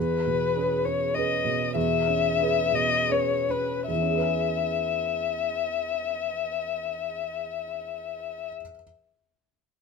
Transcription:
0.00 1.71 E2 soft
0.00 0.87 B4 medium
0.26 0.73 B2 soft
0.56 0.82 C#4 soft
0.56 0.82 G#4 soft
0.56 0.83 B4 soft
0.85 1.14 C#4 soft
0.85 1.17 C#5 medium
1.15 1.42 C#4 soft
1.15 1.42 G#4 soft
1.15 1.42 B4 soft
1.15 1.75 D#5 medium
1.45 1.94 B2 soft
1.74 3.84 E2 soft
1.74 2.76 E5 medium
2.07 2.38 C#4 soft
2.39 2.71 C#4 soft
2.39 2.71 G#4 soft
2.39 2.71 B4 soft
2.72 3.32 B2 soft
2.72 3.13 D#5 medium
3.09 3.44 C#4 soft
3.09 3.45 G#4 soft
3.09 3.45 B4 soft
3.09 3.52 C#5 medium
3.49 3.88 C#4 soft
3.49 3.88 B4 soft
3.88 8.48 E2 soft
3.88 8.49 E5 soft
3.94 8.55 E3 soft
4.02 8.62 C#4 soft
4.08 8.69 G#4 soft
4.15 8.76 B4 soft
4.22 8.83 G#5 soft

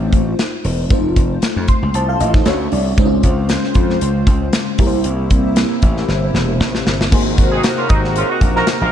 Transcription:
0.00 0.86 A3 medium
0.00 0.87 C4 medium
0.00 0.87 D#4 medium
0.00 0.87 F4 medium
0.00 0.87 C5 medium
0.12 0.33 A1 medium
0.12 kick medium
0.12 closed hi-hat medium
0.39 snare loud
0.39 closed hi-hat medium
0.65 0.85 E1 medium
0.65 open hi-hat medium
0.90 1.11 F1 loud
0.90 1.92 A3 medium
0.90 1.92 C4 medium
0.90 1.92 D#4 medium
0.90 1.93 F4 medium
0.90 1.93 C5 medium
0.90 kick loud
0.90 closed hi-hat loud
1.16 1.37 F1 medium
1.16 kick medium
1.16 closed hi-hat medium
1.42 snare loud
1.42 closed hi-hat medium
1.56 1.66 F2 loud
1.68 1.92 C6 medium
1.68 kick medium
1.68 closed hi-hat soft
1.82 1.92 C#2 medium
1.94 2.15 C2 medium
1.94 2.08 C5 medium
1.94 2.19 A5 medium
1.94 closed hi-hat medium
2.09 2.20 A4 medium
2.09 2.19 F5 medium
2.20 2.41 A1 medium
2.20 2.34 D#5 medium
2.20 2.44 F5 medium
2.20 closed hi-hat medium
2.34 2.59 D#4 soft
2.34 2.59 C5 medium
2.34 kick medium
2.34 snare soft
2.45 2.67 D2 loud
2.45 2.97 A3 medium
2.45 2.97 C#4 medium
2.45 2.98 D4 medium
2.45 2.98 F#4 medium
2.45 2.98 C#5 medium
2.45 2.70 E5 medium
2.45 snare loud
2.45 closed hi-hat medium
2.72 2.93 C2 medium
2.72 2.96 D5 medium
2.72 open hi-hat medium
2.97 3.19 C#2 loud
2.97 4.78 C#3 medium
2.97 4.75 G#3 medium
2.97 4.75 C4 medium
2.97 4.76 C#4 medium
2.97 3.05 D#4 medium
2.97 4.78 F4 medium
2.97 4.77 C5 medium
2.97 4.76 C5 medium
2.97 kick loud
2.97 closed hi-hat loud
3.05 4.79 F4 medium
3.23 3.56 C#2 medium
3.23 kick medium
3.23 closed hi-hat medium
3.49 snare loud
3.49 closed hi-hat medium
3.64 snare soft
3.74 3.96 F2 medium
3.74 kick medium
3.74 closed hi-hat soft
3.90 snare soft
4.01 4.22 C#2 loud
4.01 closed hi-hat medium
4.27 4.48 C#2 loud
4.27 kick medium
4.27 closed hi-hat medium
4.53 snare loud
4.53 closed hi-hat medium
4.78 5.00 C2 loud
4.78 7.10 C3 medium
4.78 6.82 A#3 medium
4.78 7.10 A#3 medium
4.78 6.82 C4 medium
4.78 6.82 E4 medium
4.78 7.10 E4 medium
4.78 6.83 G4 medium
4.78 4.86 A#4 medium
4.78 kick loud
4.78 open hi-hat medium
4.87 6.86 C5 medium
5.04 5.26 C2 loud
5.04 closed hi-hat medium
5.30 5.63 C2 medium
5.30 kick medium
5.30 closed hi-hat medium
5.56 snare loud
5.56 closed hi-hat medium
5.82 6.03 A1 medium
5.82 kick medium
5.82 closed hi-hat soft
5.97 snare soft
6.08 6.29 G1 medium
6.08 snare medium
6.34 6.60 E1 loud
6.34 snare medium
6.60 6.81 A1 medium
6.60 snare medium
6.75 snare medium
6.86 7.07 G1 medium
6.86 snare medium
7.01 snare medium
7.12 7.33 G#1 loud
7.12 8.92 C3 medium
7.12 8.89 A#3 medium
7.12 8.90 D#4 medium
7.12 8.90 F#4 medium
7.12 8.92 F#4 medium
7.12 8.90 G#4 medium
7.12 8.92 A#4 medium
7.12 8.91 C5 medium
7.12 kick loud
7.12 crash loud
7.38 7.59 G#1 loud
7.38 kick medium
7.38 closed hi-hat medium
7.52 7.62 C4 medium
7.52 7.61 D#4 medium
7.52 7.62 G#4 medium
7.64 snare loud
7.64 closed hi-hat medium
7.77 7.87 A#3 medium
7.77 7.87 C#4 medium
7.77 7.87 F4 medium
7.89 8.22 G#1 medium
7.89 8.01 A#3 medium
7.89 8.00 C4 medium
7.89 8.00 D#4 medium
7.89 kick medium
7.89 closed hi-hat medium
8.04 snare soft
8.16 8.27 A#3 medium
8.16 8.27 C#4 medium
8.16 8.27 F4 loud
8.16 closed hi-hat medium
8.30 8.39 C4 medium
8.30 8.39 D#4 medium
8.30 8.39 F#4 medium
8.41 8.62 A#1 medium
8.41 kick medium
8.41 closed hi-hat medium
8.56 8.65 D#4 loud
8.56 8.65 F#4 loud
8.56 8.65 A#4 loud
8.56 snare soft
8.67 snare loud
8.67 closed hi-hat medium
8.81 8.91 A#1 medium
8.81 8.92 D#4 medium
8.81 8.92 F4 medium
8.81 8.92 A#4 loud

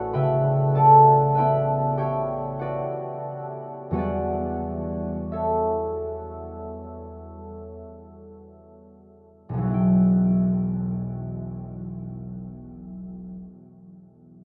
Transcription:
0.00 2.77 A1 soft
0.00 0.49 B3 soft
0.00 0.49 E4 soft
0.00 2.60 F#4 soft
0.00 0.74 A4 medium
0.00 0.13 B4 soft
0.00 1.98 C#5 medium
0.00 0.75 D5 soft
0.00 0.13 E5 medium
0.00 0.75 F#5 medium
0.00 0.13 G5 medium
0.00 0.47 A5 medium
0.00 0.12 B5 medium
0.13 4.00 C#3 soft
0.13 1.34 B4 soft
0.13 1.36 E5 medium
0.13 1.36 G5 soft
0.13 1.36 B5 medium
0.75 4.00 A4 soft
0.75 2.60 D5 soft
0.75 2.58 F#5 soft
0.75 3.99 A5 medium
1.35 3.93 B3 soft
1.35 5.28 E4 soft
1.35 2.60 B4 medium
1.35 1.98 E5 medium
1.35 1.97 G5 soft
1.39 5.29 B5 medium
1.97 5.87 G4 soft
1.97 4.00 C#5 soft
1.97 5.31 E5 soft
1.97 5.88 G5 medium
2.59 3.92 F#4 soft
2.59 3.94 B4 soft
2.59 3.94 D5 soft
2.59 3.92 F#5 medium
3.91 7.81 E2 soft
3.91 7.81 E3 soft
3.91 7.82 G3 soft
3.91 7.83 B3 soft
3.91 7.83 F#4 soft
3.91 7.84 F#5 medium
3.95 7.85 B4 soft
3.95 7.88 D5 soft
5.32 9.23 A4 soft
5.32 9.23 C#5 soft
5.32 9.22 E5 soft
9.49 13.39 E1 soft
9.54 13.44 B1 soft
9.54 13.48 E3 soft
9.62 13.32 F#3 soft
9.67 12.89 B3 soft
9.67 12.93 E4 soft
9.74 12.96 G5 soft

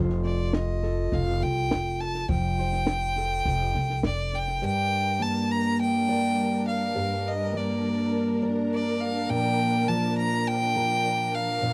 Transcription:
0.00 1.08 F1 medium
0.00 2.27 F3 medium
0.00 2.26 F4 medium
0.00 0.82 A4 medium
0.00 0.24 C5 medium
0.10 snare soft
0.24 2.26 C5 medium
0.24 0.55 D5 medium
0.24 snare soft
0.53 1.15 D#5 medium
0.53 snare medium
0.83 2.26 A4 medium
0.83 snare soft
1.12 1.40 F1 loud
1.12 1.44 F5 medium
1.12 kick medium
1.12 snare soft
1.42 1.69 C2 loud
1.42 2.02 G5 loud
1.42 snare soft
1.71 2.26 F1 medium
1.71 snare medium
2.00 2.29 A5 loud
2.00 snare soft
2.15 snare soft
2.29 3.42 F1 loud
2.29 4.63 F3 medium
2.29 4.01 G5 loud
2.29 kick medium
2.29 snare soft
2.58 4.60 C5 medium
2.58 snare soft
2.73 snare soft
2.87 snare medium
3.16 4.60 A4 medium
3.16 snare soft
3.45 3.73 F1 medium
3.45 kick medium
3.45 snare soft
3.75 4.03 C2 medium
3.75 snare soft
3.90 snare soft
4.03 4.60 F1 medium
4.03 4.37 D5 medium
4.03 snare medium
4.33 4.64 G5 loud
4.33 snare soft
4.48 snare soft
4.60 6.94 G2 medium
4.60 9.24 G3 medium
4.60 11.73 D4 medium
4.60 11.73 A#4 medium
4.66 5.24 G5 loud
5.20 7.53 A#3 medium
5.20 5.53 A5 loud
5.51 5.80 A#5 loud
5.81 6.64 G5 loud
6.08 8.42 D5 medium
6.68 7.29 F5 loud
6.95 9.29 G2 medium
7.28 7.58 D#5 medium
7.54 9.87 A#3 medium
7.54 8.43 D5 medium
8.42 10.76 D5 medium
8.73 9.02 D5 medium
9.01 9.32 F5 loud
9.29 11.59 A#2 medium
9.29 11.73 F3 medium
9.29 9.90 G5 loud
9.88 11.73 F3 medium
9.88 10.17 A5 loud
10.18 10.49 A#5 loud
10.48 11.36 G5 loud
10.76 11.73 A#4 medium
11.35 11.73 F5 loud
11.62 11.73 A#2 medium

